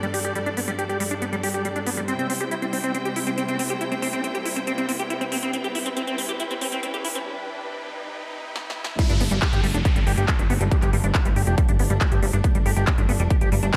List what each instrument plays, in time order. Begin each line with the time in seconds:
Already playing: string section G2 G3 D4 A4 D5, riser
0.03 acid bass G3, closed hi-hat
0.14 acid bass G4, open hi-hat
0.25 acid bass G4, closed hi-hat
0.35 acid bass G3, closed hi-hat
0.46 acid bass D4, closed hi-hat
0.57 acid bass B3, open hi-hat
0.68 acid bass G3, closed hi-hat
0.79 acid bass G4, closed hi-hat
0.89 acid bass G4, closed hi-hat
1.00 acid bass G3, open hi-hat
1.11 acid bass D4, closed hi-hat
1.22 acid bass B3, closed hi-hat
1.33 acid bass G3, closed hi-hat
1.43 acid bass G4, open hi-hat
1.54 acid bass G4, closed hi-hat
1.65 acid bass G3, closed hi-hat
1.76 acid bass D4, closed hi-hat
1.87 acid bass B3, open hi-hat
1.97 acid bass G3, closed hi-hat
2.08 string section C3 E4 C5 G5, acid bass C4, closed hi-hat
2.19 acid bass C4, closed hi-hat
2.30 acid bass C4, open hi-hat
2.41 acid bass G4, closed hi-hat
2.51 acid bass E4, closed hi-hat
2.62 acid bass C4, closed hi-hat
2.73 acid bass C4, open hi-hat
2.84 acid bass C4, closed hi-hat
2.94 acid bass C4, closed hi-hat
3.05 acid bass G4, closed hi-hat
3.16 acid bass E4, open hi-hat
3.27 acid bass C4, closed hi-hat
3.38 acid bass C4, closed hi-hat
3.48 acid bass C4, closed hi-hat
3.59 acid bass C4, open hi-hat
3.70 acid bass G4, closed hi-hat
3.81 acid bass E4, closed hi-hat
3.92 acid bass C4, closed hi-hat
4.02 acid bass C4, open hi-hat
4.13 acid bass C4, closed hi-hat
4.24 acid bass C4, closed hi-hat
4.35 acid bass G4, closed hi-hat
4.45 acid bass E4, open hi-hat
4.56 acid bass C4, closed hi-hat
4.67 acid bass C4, closed hi-hat
4.78 acid bass C4, closed hi-hat
4.89 acid bass C4, open hi-hat
4.99 acid bass G4, closed hi-hat
5.10 acid bass E4, closed hi-hat
5.21 acid bass C4, closed hi-hat
5.32 acid bass C4, open hi-hat
5.43 acid bass C4, closed hi-hat
5.53 acid bass C4, string section B4, closed hi-hat
5.64 acid bass G4, closed hi-hat
5.75 acid bass E4, open hi-hat
5.86 acid bass C4, closed hi-hat
5.97 acid bass C4, closed hi-hat
6.07 acid bass C4, closed hi-hat
6.18 acid bass C4, open hi-hat
6.29 acid bass G4, closed hi-hat
6.40 acid bass E4, closed hi-hat
6.51 acid bass C4, closed hi-hat
6.61 acid bass C4, open hi-hat
6.72 acid bass C4, closed hi-hat
6.83 acid bass C4, closed hi-hat
6.94 acid bass G4, closed hi-hat
7.05 acid bass E4, open hi-hat
7.15 acid bass C4, closed hi-hat
8.56 snare
8.70 snare
8.84 snare
8.99 string section G3 A3 D4, acid bass G3, kick, closed hi-hat, crash, downlifter
9.10 analog synth bass G1, acid bass D4, closed hi-hat
9.20 analog synth bass G1, acid bass B3, open hi-hat
9.31 analog synth bass G1, acid bass G3, closed hi-hat
9.42 acid bass G4, kick, clap, closed hi-hat
9.53 analog synth bass G1, acid bass G4, closed hi-hat
9.64 analog synth bass G1, acid bass G3, open hi-hat
9.74 analog synth bass F1, acid bass D4, closed hi-hat
9.85 acid bass B3, kick, closed hi-hat
9.96 analog synth bass G1, acid bass G3, closed hi-hat
10.07 analog synth bass G1, acid bass G4, open hi-hat
10.18 analog synth bass G1, acid bass G4, closed hi-hat
10.28 acid bass G3, kick, clap, closed hi-hat
10.39 analog synth bass G1, acid bass D4, closed hi-hat
10.50 analog synth bass G1, acid bass B3, open hi-hat
10.61 analog synth bass G1, acid bass G3, closed hi-hat
10.71 acid bass G4, kick, closed hi-hat
10.82 analog synth bass G1, acid bass G4, clap, closed hi-hat
10.93 analog synth bass G1, acid bass G3, open hi-hat
11.04 analog synth bass G1, acid bass D4, closed hi-hat
11.15 acid bass B3, kick, clap, closed hi-hat
11.25 analog synth bass G1, acid bass G3, closed hi-hat
11.36 analog synth bass G1, acid bass G4, open hi-hat
11.47 analog synth bass F1, acid bass G4, closed hi-hat
11.58 acid bass G3, kick, closed hi-hat
11.69 analog synth bass G1, acid bass D4, closed hi-hat
11.79 analog synth bass G1, acid bass B3, open hi-hat
11.90 analog synth bass G1, acid bass G3, closed hi-hat
12.01 acid bass G4, kick, clap, closed hi-hat
12.12 analog synth bass G1, acid bass G4, closed hi-hat
12.23 analog synth bass G1, acid bass G3, open hi-hat
12.33 analog synth bass G1, acid bass D4, closed hi-hat
12.44 acid bass B3, kick, closed hi-hat
12.55 analog synth bass G1, acid bass G3, closed hi-hat
12.66 analog synth bass G1, acid bass G4, open hi-hat
12.77 analog synth bass G1, acid bass G4, closed hi-hat
12.87 acid bass G3, kick, clap, closed hi-hat
12.98 analog synth bass G1, acid bass D4, closed hi-hat
13.09 analog synth bass G1, acid bass B3, open hi-hat
13.20 analog synth bass F1, acid bass G3, closed hi-hat
13.30 acid bass G4, kick, closed hi-hat
13.41 analog synth bass G1, acid bass G4, closed hi-hat
13.52 analog synth bass G1, acid bass G3, open hi-hat
13.63 analog synth bass G1, acid bass D4, closed hi-hat
13.74 clap, closed hi-hat